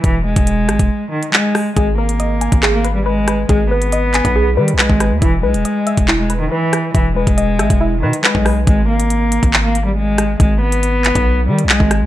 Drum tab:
HH |x--xx-xx---x--o-|x--xx-xx--x---x-|x--xx-xx---x--x-|x--xx-xx--x---x-|
CP |------------x---|--------x-------|------x-----x---|--------x-------|
SD |------r-------r-|--------------r-|--------------r-|--------------r-|
BD |o--o---o--------|o------o--------|o------o-----o--|o------o--------|

HH |x--xx-xx---x--o-|x--xx-xx--x---x-|x--xx-xx---x--x-|
CP |------------x---|--------x-------|------x-----x---|
SD |------r-------r-|--------------r-|--------------r-|
BD |o--o---o-----o--|o------o--------|o------o-----o--|